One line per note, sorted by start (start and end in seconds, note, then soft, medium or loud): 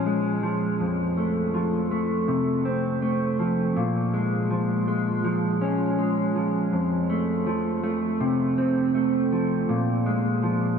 0.00 0.80 A#2 medium
0.00 0.43 F3 medium
0.00 0.88 C#4 medium
0.06 0.87 G#3 soft
0.43 1.54 F3 soft
0.80 3.76 F2 medium
1.17 1.90 A3 soft
1.54 3.39 F3 medium
1.91 3.01 A3 soft
2.28 3.76 C3 medium
2.65 3.84 C4 medium
3.02 3.84 A3 medium
3.40 4.50 F3 medium
3.77 6.73 A#2 medium
4.14 4.86 G#3 soft
4.51 5.24 F3 medium
4.88 5.97 G#3 medium
5.25 6.35 F3 medium
5.61 6.80 C#4 medium
5.98 6.80 G#3 medium
6.35 7.46 F3 soft
6.73 9.69 F2 medium
7.10 7.82 A3 soft
7.47 9.32 F3 medium
7.83 8.94 A3 soft
8.21 9.69 C3 medium
8.58 9.76 C4 medium
8.95 9.76 A3 medium
9.32 10.43 F3 soft
9.69 10.79 A#2 medium
10.06 10.79 G#3 soft
10.43 10.79 F3 medium